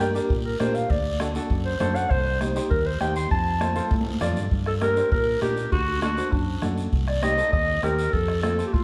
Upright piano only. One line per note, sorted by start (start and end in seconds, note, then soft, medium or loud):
0.00 0.05 A#4 loud
0.15 0.31 D4 medium
0.15 0.31 G4 medium
0.15 0.31 A#4 medium
0.60 0.81 D4 medium
0.60 0.81 G4 medium
0.60 0.81 A#4 medium
1.20 1.25 D4 medium
1.20 1.25 F#4 medium
1.20 1.26 A4 medium
1.35 1.51 D4 medium
1.35 1.51 F#4 medium
1.35 1.51 A4 medium
1.80 2.02 D4 medium
1.80 2.02 F#4 medium
1.80 2.02 A4 medium
2.41 2.46 D#4 medium
2.41 2.46 G4 medium
2.41 2.46 C5 medium
2.56 2.72 D#4 medium
2.56 2.72 G4 medium
2.56 2.72 C5 medium
3.01 3.22 D#4 medium
3.01 3.22 G4 medium
3.01 3.22 C5 medium
3.61 3.66 F4 medium
3.61 3.66 A4 medium
3.61 3.67 C5 medium
3.76 3.92 F4 medium
3.76 3.92 A4 medium
3.76 3.92 C5 medium
4.21 4.42 F4 medium
4.21 4.42 A4 medium
4.21 4.43 D5 loud
4.81 4.87 D4 medium
4.81 4.87 G4 medium
4.81 4.87 A#4 medium
4.96 5.12 D4 medium
4.96 5.12 G4 medium
4.96 5.13 C5 medium
5.41 5.63 D4 medium
5.41 5.63 G4 medium
5.41 5.63 A#4 medium
6.02 6.07 D4 medium
6.02 6.08 F#4 medium
6.02 6.08 A4 medium
6.17 6.33 D4 medium
6.17 6.33 F#4 medium
6.17 6.33 C5 medium
6.62 6.83 D4 medium
6.62 6.84 F#4 medium
6.62 6.84 A4 medium
7.22 7.28 C4 medium
7.22 7.28 D#4 medium
7.22 7.28 G4 medium
7.37 7.53 C4 medium
7.37 7.54 D#4 medium
7.37 7.54 A4 medium
7.82 8.04 C4 medium
7.82 8.04 D#4 medium
7.82 8.04 G4 medium
8.43 8.49 C4 medium
8.43 8.49 F4 medium
8.43 8.49 A4 medium
8.58 8.74 C4 medium
8.58 8.74 F4 medium
8.58 8.75 A4 medium